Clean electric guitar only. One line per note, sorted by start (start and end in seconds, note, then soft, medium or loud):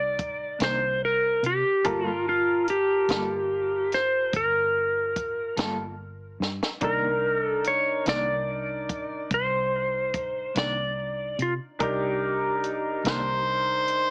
0.59 0.85 C3 soft
0.59 0.85 D#3 medium
0.59 0.85 A#3 medium
0.59 0.84 D4 medium
1.84 2.09 G3 medium
1.84 2.10 A#3 medium
1.84 2.10 F4 medium
1.84 2.10 A4 medium
3.09 3.34 G3 soft
3.09 3.34 A#3 medium
3.09 3.34 F4 medium
3.09 3.34 A4 medium
5.57 5.83 G3 soft
5.57 5.83 A#3 medium
5.57 5.82 F4 medium
5.57 5.82 A4 medium
6.82 7.07 C3 medium
6.82 7.07 D#3 medium
6.82 7.07 A#3 medium
6.82 7.07 D4 medium
8.05 8.31 C3 soft
8.05 8.31 D#3 medium
8.05 8.31 A#3 medium
8.05 8.31 D4 medium
10.55 10.80 C3 soft
10.55 10.80 D#3 medium
10.55 10.80 A#3 soft
10.55 10.80 D4 medium
13.04 13.30 C3 medium
13.04 13.29 D#3 medium
13.04 13.29 A#3 medium
13.04 13.29 D4 medium